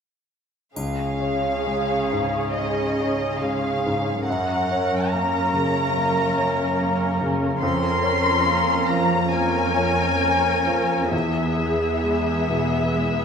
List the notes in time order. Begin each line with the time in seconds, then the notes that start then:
0.75 C#2 C#3 C#4 G#4 F5, triangle
1.21 C#5
1.67 G#3
2.13 G#2
2.53 G#3 D#5
3.00 C#5
3.41 G#3 F5
3.86 G#2
4.27 F#2 C#4 A#4 F#5
4.71 C#5
5.09 A#3 A#5
5.54 C#3
5.96 A#3
6.38 C#5
6.79 A#3
7.21 C#3
7.63 F2 C#4 A#4 C6
8.03 C#5
8.46 A#3
8.89 F3 A#5
9.33 A#3 C#4 A#4 G#5
9.76 C#5
10.21 A#3
10.67 F3
11.11 E2 B3 G#4 E5
11.57 G#4
12.04 G#3
12.48 B2
12.94 G#3